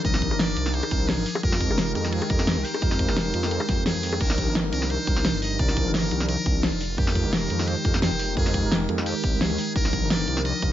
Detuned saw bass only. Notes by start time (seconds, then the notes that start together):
0.05 C2
0.31 G1
0.57 C2
0.91 C2
1.18 G1
1.43 F2
1.70 F1
1.96 F2
2.30 F2
2.57 C2
2.82 F2
3.09 F1
3.34 F2
3.69 F2
3.95 F2
4.21 C2
4.47 G1
4.73 C2
5.07 C2
5.34 G1
5.59 C2
5.86 G1
6.11 C2
6.46 C2
6.73 F1
6.98 F2
7.25 F1
7.50 F2
7.85 F2
8.11 F1
8.37 F2
8.64 F1
8.89 F2
9.24 C2
9.50 D#2
9.76 C2
10.02 G1
10.28 C2
10.62 C2